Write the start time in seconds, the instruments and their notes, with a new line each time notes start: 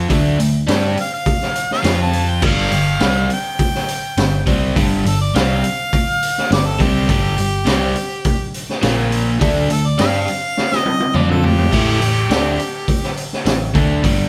0.10 picked electric bass D2, overdriven electric guitar D3 A3 D4, kick, open hi-hat
0.39 picked electric bass D2, overdriven electric guitar D3 A3, open hi-hat
0.67 picked electric bass G2, overdriven electric guitar G3 D4 G4, snare, open hi-hat
0.97 harmonica F5, open hi-hat
1.14 harmonica F5
1.26 kick, open hi-hat
1.41 snare
1.56 open hi-hat
1.71 harmonica F5, snare
1.83 picked electric bass F2, overdriven electric guitar F3 C4 F4, snare, open hi-hat
2.02 harmonica A5
2.13 open hi-hat
2.30 harmonica G5
2.42 picked electric bass G1, overdriven electric guitar G2 D3 G3, kick, crash
2.46 harmonica F5
2.71 picked electric bass G1, overdriven electric guitar G2 D3, open hi-hat
3.00 picked electric bass C2, overdriven electric guitar C3 G3 C4, snare, open hi-hat
3.30 harmonica G5, open hi-hat
3.59 kick, open hi-hat
3.74 snare
3.88 open hi-hat
4.17 picked electric bass G1, overdriven electric guitar G2 D3, snare, open hi-hat
4.46 picked electric bass C2, overdriven electric guitar C3 G3 C4, kick, open hi-hat
4.75 picked electric bass G1, overdriven electric guitar G2 D3 G3, kick, open hi-hat
5.05 picked electric bass G1, overdriven electric guitar G2 D3, harmonica A4, open hi-hat
5.21 harmonica D5
5.34 picked electric bass C2, overdriven electric guitar C3 G3 C4, harmonica F5, snare, open hi-hat
5.64 open hi-hat
5.93 kick, open hi-hat
6.23 open hi-hat
6.38 snare
6.50 picked electric bass G1, overdriven electric guitar G2 D3, harmonica D5, snare, open hi-hat
6.67 harmonica A4
6.79 picked electric bass C2, overdriven electric guitar C3 G3 C4, harmonica G4, kick, open hi-hat
7.08 picked electric bass G1, overdriven electric guitar G2 D3 G3, kick, open hi-hat
7.37 picked electric bass G1, overdriven electric guitar G2 D3, open hi-hat
7.65 picked electric bass C2, overdriven electric guitar C3 G3 C4, snare, open hi-hat
7.95 open hi-hat
8.25 kick, open hi-hat
8.54 open hi-hat
8.69 snare
8.82 picked electric bass A#1, overdriven electric guitar A#2 F3 A#3, snare, open hi-hat
9.12 open hi-hat
9.40 picked electric bass D2, overdriven electric guitar D3 A3 D4, kick, open hi-hat
9.69 picked electric bass D2, overdriven electric guitar D3 A3, harmonica A4, open hi-hat
9.86 harmonica D5
9.98 picked electric bass G2, overdriven electric guitar G3 D4 G4, harmonica F5, snare, open hi-hat
10.28 open hi-hat
10.57 snare
10.72 snare
10.77 harmonica D#5
10.86 high tom
11.00 high tom
11.14 picked electric bass F2, overdriven electric guitar F3 C4 F4, harmonica D5, mid tom
11.29 harmonica A4, mid tom
11.43 harmonica G4, floor tom
11.58 floor tom
11.72 picked electric bass A1, overdriven electric guitar A2 E3 A3, kick, crash
12.00 picked electric bass A1, overdriven electric guitar A2 E3, open hi-hat
12.30 picked electric bass D2, overdriven electric guitar D3 A3 D4, snare, open hi-hat
12.59 open hi-hat
12.88 kick, open hi-hat
13.03 snare
13.17 open hi-hat
13.33 snare
13.45 picked electric bass A1, overdriven electric guitar A2 E3, snare, open hi-hat
13.74 picked electric bass D2, overdriven electric guitar D3 A3 D4, kick, open hi-hat
14.03 picked electric bass G1, overdriven electric guitar G2 D3 G3, kick, open hi-hat